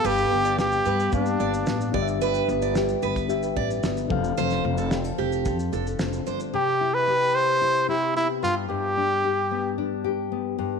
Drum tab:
SH |xx-xxxxxxxxxxx-x|xxxxxxxxxx-xxx-x|xx-xxx-xxxxxxxxx|----------------|
SD |----o-------o---|----o-------o---|-o--o-------o---|----------------|
BD |--------o-----o-|-------o--o---o-|--------o-------|----------------|

SH |----------------|
SD |----------------|
BD |----------------|